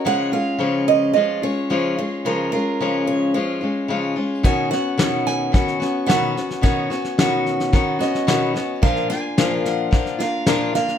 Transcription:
<<
  \new Staff \with { instrumentName = "Steel-string acoustic guitar" } { \time 4/4 \key ces \lydian \tempo 4 = 109 ges''8 f''4 ees''8 ees''8 des''4 des''8 | bes'8 bes'4 des''8 des''4. r8 | aes''8 fis''4 aes''4. fis''4 | cis''4 r4. dis''4. |
f''8 aes''4 ges''4 f''4 f''8 | }
  \new Staff \with { instrumentName = "Steel-string acoustic guitar" } { \time 4/4 \key ces \lydian <des f aes des' f'>8 <aes des' f'>8 <des f aes des' f'>4 <f aes des' f'>8 <aes des' f'>8 <des f aes des' f'>8 <aes des' f'>8 | <des f aes des' f'>8 <aes des' f'>8 <des f aes des' f'>4 <f aes des' f'>8 <aes des' f'>8 <des f aes des' f'>8 <aes des' f'>8 | <b, dis b cis' fis'>8 <b cis' fis'>8 <b, dis b cis' fis'>4 <dis b cis' fis'>8 <b cis' fis'>8 <b, dis b cis' fis'>8 <b cis' fis'>8 | <b, dis b cis' fis'>8 <b cis' fis'>8 <b, dis b cis' fis'>4 <dis b cis' fis'>8 <b cis' fis'>8 <b, dis b cis' fis'>8 <b cis' fis'>8 |
<bes, f bes d' f'>8 <bes d' f'>8 <bes, f bes d' f'>4 <f bes d' f'>8 <bes d' f'>8 <bes, f bes d' f'>8 <bes d' f'>8 | }
  \new DrumStaff \with { instrumentName = "Drums" } \drummode { \time 4/4 r4 r4 r4 r4 | r4 r4 r4 r4 | <bd sn>8 sn8 sn8 sn8 <bd sn>16 sn16 sn8 sn8 sn16 sn16 | <bd sn>8 sn16 sn16 sn8 sn16 sn16 <bd sn>8 sn16 sn16 sn8 sn8 |
<bd sn>16 sn16 sn8 sn8 sn8 <bd sn>16 sn16 sn8 sn8 sn16 sn16 | }
>>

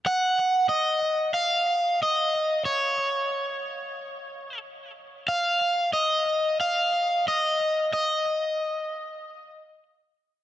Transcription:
\new Staff \with { instrumentName = "Overdriven electric guitar" } { \time 4/4 \key ees \minor \tempo 4 = 92 ges''4 ees''4 f''4 ees''4 | des''2. r4 | f''4 ees''4 f''4 ees''4 | ees''2. r4 | }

